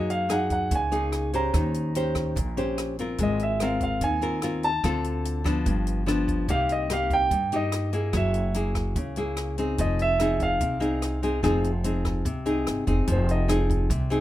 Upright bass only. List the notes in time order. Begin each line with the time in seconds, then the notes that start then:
Already playing: F#2
0.71 C#2
1.54 D#2
2.37 A#1
3.19 G#1
4.02 D#2
4.84 D2
5.66 G1
6.49 C2
7.31 G2
8.13 F#1
8.96 C#2
9.79 F1
10.61 C2
11.44 F1
12.25 C2
12.67 G1
12.87 F1
13.08 F1
13.90 C2